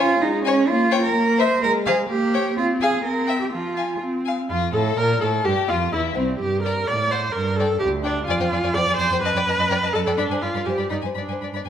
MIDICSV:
0, 0, Header, 1, 5, 480
1, 0, Start_track
1, 0, Tempo, 472441
1, 693, Time_signature, 2, 2, 24, 8
1, 3098, Tempo, 480000
1, 6458, Tempo, 470958
1, 10298, Tempo, 488998
1, 11783, End_track
2, 0, Start_track
2, 0, Title_t, "Violin"
2, 0, Program_c, 0, 40
2, 453, Note_on_c, 0, 80, 65
2, 564, Note_off_c, 0, 80, 0
2, 925, Note_on_c, 0, 79, 78
2, 1039, Note_off_c, 0, 79, 0
2, 1416, Note_on_c, 0, 76, 75
2, 1526, Note_off_c, 0, 76, 0
2, 1886, Note_on_c, 0, 77, 74
2, 2000, Note_off_c, 0, 77, 0
2, 2372, Note_on_c, 0, 79, 61
2, 2485, Note_off_c, 0, 79, 0
2, 2850, Note_on_c, 0, 80, 64
2, 2965, Note_off_c, 0, 80, 0
2, 3315, Note_on_c, 0, 79, 55
2, 3438, Note_off_c, 0, 79, 0
2, 3818, Note_on_c, 0, 80, 53
2, 3934, Note_off_c, 0, 80, 0
2, 4298, Note_on_c, 0, 80, 54
2, 4417, Note_off_c, 0, 80, 0
2, 4546, Note_on_c, 0, 65, 82
2, 4771, Note_off_c, 0, 65, 0
2, 4784, Note_on_c, 0, 69, 68
2, 5020, Note_on_c, 0, 70, 78
2, 5035, Note_off_c, 0, 69, 0
2, 5247, Note_off_c, 0, 70, 0
2, 5253, Note_on_c, 0, 69, 74
2, 5333, Note_off_c, 0, 69, 0
2, 5504, Note_on_c, 0, 67, 80
2, 5749, Note_on_c, 0, 65, 73
2, 5764, Note_off_c, 0, 67, 0
2, 5984, Note_off_c, 0, 65, 0
2, 5992, Note_on_c, 0, 64, 77
2, 6221, Note_off_c, 0, 64, 0
2, 6243, Note_on_c, 0, 60, 68
2, 6323, Note_off_c, 0, 60, 0
2, 6707, Note_on_c, 0, 82, 55
2, 6783, Note_off_c, 0, 82, 0
2, 7182, Note_on_c, 0, 78, 56
2, 7258, Note_off_c, 0, 78, 0
2, 7668, Note_on_c, 0, 79, 55
2, 7742, Note_off_c, 0, 79, 0
2, 8116, Note_on_c, 0, 79, 56
2, 8195, Note_off_c, 0, 79, 0
2, 8356, Note_on_c, 0, 80, 74
2, 8406, Note_off_c, 0, 80, 0
2, 8491, Note_on_c, 0, 79, 56
2, 8538, Note_off_c, 0, 79, 0
2, 8622, Note_on_c, 0, 80, 54
2, 8667, Note_off_c, 0, 80, 0
2, 8724, Note_on_c, 0, 80, 75
2, 8773, Note_off_c, 0, 80, 0
2, 8855, Note_on_c, 0, 79, 58
2, 8902, Note_off_c, 0, 79, 0
2, 8996, Note_on_c, 0, 80, 63
2, 9039, Note_off_c, 0, 80, 0
2, 9117, Note_on_c, 0, 80, 72
2, 9160, Note_off_c, 0, 80, 0
2, 9223, Note_on_c, 0, 79, 63
2, 9269, Note_off_c, 0, 79, 0
2, 9353, Note_on_c, 0, 81, 76
2, 9397, Note_off_c, 0, 81, 0
2, 9468, Note_on_c, 0, 79, 58
2, 9513, Note_off_c, 0, 79, 0
2, 9590, Note_on_c, 0, 81, 56
2, 9635, Note_off_c, 0, 81, 0
2, 9707, Note_on_c, 0, 81, 72
2, 9752, Note_off_c, 0, 81, 0
2, 9813, Note_on_c, 0, 79, 59
2, 9862, Note_off_c, 0, 79, 0
2, 9952, Note_on_c, 0, 81, 61
2, 9997, Note_off_c, 0, 81, 0
2, 10061, Note_on_c, 0, 81, 72
2, 10108, Note_off_c, 0, 81, 0
2, 10184, Note_on_c, 0, 79, 66
2, 10231, Note_off_c, 0, 79, 0
2, 10294, Note_on_c, 0, 83, 81
2, 10342, Note_off_c, 0, 83, 0
2, 10428, Note_on_c, 0, 80, 44
2, 10472, Note_off_c, 0, 80, 0
2, 10536, Note_on_c, 0, 83, 48
2, 10583, Note_off_c, 0, 83, 0
2, 10655, Note_on_c, 0, 83, 55
2, 10701, Note_off_c, 0, 83, 0
2, 10761, Note_on_c, 0, 80, 45
2, 10811, Note_off_c, 0, 80, 0
2, 10882, Note_on_c, 0, 83, 45
2, 10931, Note_off_c, 0, 83, 0
2, 11003, Note_on_c, 0, 83, 61
2, 11053, Note_off_c, 0, 83, 0
2, 11124, Note_on_c, 0, 80, 46
2, 11174, Note_off_c, 0, 80, 0
2, 11246, Note_on_c, 0, 83, 55
2, 11296, Note_off_c, 0, 83, 0
2, 11384, Note_on_c, 0, 80, 34
2, 11431, Note_off_c, 0, 80, 0
2, 11509, Note_on_c, 0, 83, 39
2, 11555, Note_off_c, 0, 83, 0
2, 11631, Note_on_c, 0, 83, 52
2, 11676, Note_off_c, 0, 83, 0
2, 11743, Note_on_c, 0, 80, 41
2, 11783, Note_off_c, 0, 80, 0
2, 11783, End_track
3, 0, Start_track
3, 0, Title_t, "Violin"
3, 0, Program_c, 1, 40
3, 474, Note_on_c, 1, 73, 74
3, 576, Note_off_c, 1, 73, 0
3, 931, Note_on_c, 1, 73, 76
3, 1042, Note_off_c, 1, 73, 0
3, 1402, Note_on_c, 1, 72, 68
3, 1519, Note_off_c, 1, 72, 0
3, 1900, Note_on_c, 1, 72, 69
3, 2008, Note_off_c, 1, 72, 0
3, 2381, Note_on_c, 1, 73, 66
3, 2490, Note_off_c, 1, 73, 0
3, 2868, Note_on_c, 1, 77, 69
3, 2975, Note_off_c, 1, 77, 0
3, 3332, Note_on_c, 1, 76, 58
3, 3447, Note_off_c, 1, 76, 0
3, 3814, Note_on_c, 1, 77, 49
3, 3932, Note_off_c, 1, 77, 0
3, 4325, Note_on_c, 1, 77, 58
3, 4431, Note_off_c, 1, 77, 0
3, 4560, Note_on_c, 1, 65, 79
3, 4779, Note_off_c, 1, 65, 0
3, 4800, Note_on_c, 1, 69, 67
3, 5039, Note_on_c, 1, 70, 68
3, 5054, Note_off_c, 1, 69, 0
3, 5268, Note_off_c, 1, 70, 0
3, 5274, Note_on_c, 1, 69, 70
3, 5501, Note_on_c, 1, 67, 78
3, 5516, Note_off_c, 1, 69, 0
3, 5740, Note_off_c, 1, 67, 0
3, 5748, Note_on_c, 1, 65, 66
3, 5971, Note_off_c, 1, 65, 0
3, 5977, Note_on_c, 1, 64, 73
3, 6057, Note_off_c, 1, 64, 0
3, 6199, Note_on_c, 1, 60, 67
3, 6279, Note_off_c, 1, 60, 0
3, 6706, Note_on_c, 1, 74, 54
3, 6782, Note_off_c, 1, 74, 0
3, 7183, Note_on_c, 1, 74, 58
3, 7259, Note_off_c, 1, 74, 0
3, 7670, Note_on_c, 1, 74, 52
3, 7743, Note_off_c, 1, 74, 0
3, 8133, Note_on_c, 1, 74, 62
3, 8209, Note_off_c, 1, 74, 0
3, 8387, Note_on_c, 1, 74, 86
3, 8431, Note_off_c, 1, 74, 0
3, 8488, Note_on_c, 1, 72, 56
3, 8535, Note_off_c, 1, 72, 0
3, 8615, Note_on_c, 1, 74, 63
3, 8661, Note_off_c, 1, 74, 0
3, 8730, Note_on_c, 1, 74, 66
3, 8778, Note_off_c, 1, 74, 0
3, 8861, Note_on_c, 1, 72, 59
3, 8906, Note_off_c, 1, 72, 0
3, 8974, Note_on_c, 1, 74, 59
3, 9021, Note_off_c, 1, 74, 0
3, 9104, Note_on_c, 1, 74, 73
3, 9149, Note_off_c, 1, 74, 0
3, 9225, Note_on_c, 1, 72, 78
3, 9270, Note_off_c, 1, 72, 0
3, 9353, Note_on_c, 1, 75, 92
3, 9397, Note_off_c, 1, 75, 0
3, 9475, Note_on_c, 1, 74, 45
3, 9518, Note_off_c, 1, 74, 0
3, 9589, Note_on_c, 1, 75, 56
3, 9634, Note_off_c, 1, 75, 0
3, 9703, Note_on_c, 1, 75, 78
3, 9750, Note_off_c, 1, 75, 0
3, 9829, Note_on_c, 1, 74, 59
3, 9874, Note_off_c, 1, 74, 0
3, 9942, Note_on_c, 1, 75, 57
3, 9989, Note_off_c, 1, 75, 0
3, 10065, Note_on_c, 1, 75, 77
3, 10112, Note_off_c, 1, 75, 0
3, 10188, Note_on_c, 1, 74, 66
3, 10234, Note_off_c, 1, 74, 0
3, 10307, Note_on_c, 1, 74, 67
3, 10352, Note_off_c, 1, 74, 0
3, 10436, Note_on_c, 1, 72, 43
3, 10478, Note_off_c, 1, 72, 0
3, 10565, Note_on_c, 1, 74, 49
3, 10605, Note_off_c, 1, 74, 0
3, 10678, Note_on_c, 1, 74, 68
3, 10720, Note_off_c, 1, 74, 0
3, 10802, Note_on_c, 1, 72, 48
3, 10843, Note_off_c, 1, 72, 0
3, 10905, Note_on_c, 1, 74, 40
3, 10950, Note_off_c, 1, 74, 0
3, 11029, Note_on_c, 1, 74, 58
3, 11074, Note_off_c, 1, 74, 0
3, 11159, Note_on_c, 1, 72, 51
3, 11202, Note_off_c, 1, 72, 0
3, 11281, Note_on_c, 1, 74, 52
3, 11324, Note_off_c, 1, 74, 0
3, 11419, Note_on_c, 1, 72, 37
3, 11459, Note_off_c, 1, 72, 0
3, 11532, Note_on_c, 1, 74, 41
3, 11574, Note_off_c, 1, 74, 0
3, 11654, Note_on_c, 1, 74, 56
3, 11695, Note_off_c, 1, 74, 0
3, 11783, End_track
4, 0, Start_track
4, 0, Title_t, "Viola"
4, 0, Program_c, 2, 41
4, 0, Note_on_c, 2, 61, 73
4, 129, Note_off_c, 2, 61, 0
4, 205, Note_on_c, 2, 56, 79
4, 607, Note_off_c, 2, 56, 0
4, 687, Note_on_c, 2, 58, 82
4, 1087, Note_off_c, 2, 58, 0
4, 1157, Note_on_c, 2, 58, 88
4, 1566, Note_off_c, 2, 58, 0
4, 1652, Note_on_c, 2, 56, 78
4, 2052, Note_off_c, 2, 56, 0
4, 2124, Note_on_c, 2, 58, 84
4, 2530, Note_off_c, 2, 58, 0
4, 2600, Note_on_c, 2, 60, 72
4, 3009, Note_off_c, 2, 60, 0
4, 3092, Note_on_c, 2, 60, 74
4, 3495, Note_off_c, 2, 60, 0
4, 3582, Note_on_c, 2, 53, 61
4, 3987, Note_off_c, 2, 53, 0
4, 4055, Note_on_c, 2, 60, 65
4, 4465, Note_off_c, 2, 60, 0
4, 4545, Note_on_c, 2, 65, 76
4, 4625, Note_off_c, 2, 65, 0
4, 4780, Note_on_c, 2, 69, 83
4, 4860, Note_off_c, 2, 69, 0
4, 5023, Note_on_c, 2, 70, 97
4, 5251, Note_off_c, 2, 70, 0
4, 5257, Note_on_c, 2, 69, 74
4, 5337, Note_off_c, 2, 69, 0
4, 5492, Note_on_c, 2, 67, 81
4, 5572, Note_off_c, 2, 67, 0
4, 5732, Note_on_c, 2, 65, 79
4, 5812, Note_off_c, 2, 65, 0
4, 5974, Note_on_c, 2, 64, 81
4, 6054, Note_off_c, 2, 64, 0
4, 6202, Note_on_c, 2, 60, 71
4, 6438, Note_off_c, 2, 60, 0
4, 6444, Note_on_c, 2, 67, 86
4, 6677, Note_off_c, 2, 67, 0
4, 6683, Note_on_c, 2, 70, 92
4, 6935, Note_on_c, 2, 74, 103
4, 6951, Note_off_c, 2, 70, 0
4, 7171, Note_on_c, 2, 72, 88
4, 7186, Note_off_c, 2, 74, 0
4, 7388, Note_on_c, 2, 70, 91
4, 7403, Note_off_c, 2, 72, 0
4, 7633, Note_on_c, 2, 69, 95
4, 7648, Note_off_c, 2, 70, 0
4, 7864, Note_off_c, 2, 69, 0
4, 7871, Note_on_c, 2, 67, 102
4, 7952, Note_off_c, 2, 67, 0
4, 8111, Note_on_c, 2, 62, 92
4, 8338, Note_off_c, 2, 62, 0
4, 8344, Note_on_c, 2, 65, 98
4, 8837, Note_on_c, 2, 74, 118
4, 8852, Note_off_c, 2, 65, 0
4, 9061, Note_off_c, 2, 74, 0
4, 9067, Note_on_c, 2, 72, 102
4, 9315, Note_off_c, 2, 72, 0
4, 9324, Note_on_c, 2, 71, 105
4, 10049, Note_on_c, 2, 69, 89
4, 10065, Note_off_c, 2, 71, 0
4, 10295, Note_on_c, 2, 62, 88
4, 10310, Note_off_c, 2, 69, 0
4, 10535, Note_on_c, 2, 65, 81
4, 10550, Note_off_c, 2, 62, 0
4, 10771, Note_on_c, 2, 67, 73
4, 10786, Note_off_c, 2, 65, 0
4, 11004, Note_off_c, 2, 67, 0
4, 11010, Note_on_c, 2, 63, 62
4, 11089, Note_off_c, 2, 63, 0
4, 11253, Note_on_c, 2, 62, 47
4, 11728, Note_off_c, 2, 62, 0
4, 11783, End_track
5, 0, Start_track
5, 0, Title_t, "Cello"
5, 0, Program_c, 3, 42
5, 0, Note_on_c, 3, 65, 106
5, 223, Note_on_c, 3, 63, 92
5, 239, Note_off_c, 3, 65, 0
5, 450, Note_off_c, 3, 63, 0
5, 456, Note_on_c, 3, 61, 94
5, 693, Note_on_c, 3, 65, 102
5, 708, Note_off_c, 3, 61, 0
5, 1039, Note_off_c, 3, 65, 0
5, 1045, Note_on_c, 3, 70, 94
5, 1421, Note_on_c, 3, 72, 102
5, 1437, Note_off_c, 3, 70, 0
5, 1647, Note_off_c, 3, 72, 0
5, 1653, Note_on_c, 3, 70, 108
5, 1734, Note_off_c, 3, 70, 0
5, 1899, Note_on_c, 3, 68, 102
5, 1980, Note_off_c, 3, 68, 0
5, 2130, Note_on_c, 3, 67, 84
5, 2604, Note_off_c, 3, 67, 0
5, 2615, Note_on_c, 3, 65, 101
5, 2696, Note_off_c, 3, 65, 0
5, 2857, Note_on_c, 3, 68, 95
5, 3088, Note_off_c, 3, 68, 0
5, 3094, Note_on_c, 3, 70, 82
5, 3449, Note_off_c, 3, 70, 0
5, 3459, Note_on_c, 3, 67, 66
5, 3566, Note_off_c, 3, 67, 0
5, 3572, Note_on_c, 3, 65, 75
5, 4054, Note_off_c, 3, 65, 0
5, 4549, Note_on_c, 3, 41, 76
5, 4773, Note_off_c, 3, 41, 0
5, 4789, Note_on_c, 3, 45, 84
5, 5018, Note_off_c, 3, 45, 0
5, 5024, Note_on_c, 3, 46, 76
5, 5257, Note_off_c, 3, 46, 0
5, 5263, Note_on_c, 3, 45, 70
5, 5494, Note_off_c, 3, 45, 0
5, 5500, Note_on_c, 3, 43, 80
5, 5580, Note_off_c, 3, 43, 0
5, 5750, Note_on_c, 3, 41, 72
5, 5975, Note_off_c, 3, 41, 0
5, 5981, Note_on_c, 3, 40, 66
5, 6215, Note_off_c, 3, 40, 0
5, 6222, Note_on_c, 3, 36, 62
5, 6454, Note_off_c, 3, 36, 0
5, 6462, Note_on_c, 3, 43, 70
5, 6863, Note_off_c, 3, 43, 0
5, 6947, Note_on_c, 3, 45, 63
5, 7343, Note_off_c, 3, 45, 0
5, 7409, Note_on_c, 3, 43, 80
5, 7810, Note_off_c, 3, 43, 0
5, 7893, Note_on_c, 3, 38, 66
5, 8289, Note_off_c, 3, 38, 0
5, 8365, Note_on_c, 3, 41, 82
5, 8414, Note_off_c, 3, 41, 0
5, 8483, Note_on_c, 3, 41, 61
5, 8532, Note_off_c, 3, 41, 0
5, 8606, Note_on_c, 3, 41, 63
5, 8654, Note_off_c, 3, 41, 0
5, 8726, Note_on_c, 3, 41, 81
5, 8774, Note_off_c, 3, 41, 0
5, 8842, Note_on_c, 3, 41, 57
5, 8891, Note_off_c, 3, 41, 0
5, 8960, Note_on_c, 3, 41, 65
5, 9010, Note_off_c, 3, 41, 0
5, 9077, Note_on_c, 3, 41, 74
5, 9127, Note_off_c, 3, 41, 0
5, 9208, Note_on_c, 3, 41, 59
5, 9257, Note_off_c, 3, 41, 0
5, 9313, Note_on_c, 3, 42, 82
5, 9365, Note_off_c, 3, 42, 0
5, 9446, Note_on_c, 3, 42, 58
5, 9495, Note_off_c, 3, 42, 0
5, 9568, Note_on_c, 3, 42, 70
5, 9617, Note_off_c, 3, 42, 0
5, 9686, Note_on_c, 3, 42, 79
5, 9736, Note_off_c, 3, 42, 0
5, 9811, Note_on_c, 3, 42, 57
5, 9860, Note_off_c, 3, 42, 0
5, 9937, Note_on_c, 3, 42, 59
5, 9985, Note_off_c, 3, 42, 0
5, 10060, Note_on_c, 3, 42, 84
5, 10108, Note_off_c, 3, 42, 0
5, 10184, Note_on_c, 3, 42, 52
5, 10231, Note_off_c, 3, 42, 0
5, 10305, Note_on_c, 3, 43, 72
5, 10350, Note_off_c, 3, 43, 0
5, 10416, Note_on_c, 3, 43, 49
5, 10462, Note_off_c, 3, 43, 0
5, 10542, Note_on_c, 3, 43, 57
5, 10587, Note_off_c, 3, 43, 0
5, 10654, Note_on_c, 3, 43, 66
5, 10701, Note_off_c, 3, 43, 0
5, 10780, Note_on_c, 3, 43, 44
5, 10826, Note_off_c, 3, 43, 0
5, 10893, Note_on_c, 3, 43, 49
5, 10941, Note_off_c, 3, 43, 0
5, 11012, Note_on_c, 3, 43, 67
5, 11060, Note_off_c, 3, 43, 0
5, 11137, Note_on_c, 3, 43, 43
5, 11184, Note_off_c, 3, 43, 0
5, 11255, Note_on_c, 3, 43, 63
5, 11303, Note_off_c, 3, 43, 0
5, 11385, Note_on_c, 3, 43, 38
5, 11431, Note_off_c, 3, 43, 0
5, 11507, Note_on_c, 3, 43, 44
5, 11553, Note_off_c, 3, 43, 0
5, 11623, Note_on_c, 3, 43, 54
5, 11670, Note_off_c, 3, 43, 0
5, 11744, Note_on_c, 3, 43, 38
5, 11783, Note_off_c, 3, 43, 0
5, 11783, End_track
0, 0, End_of_file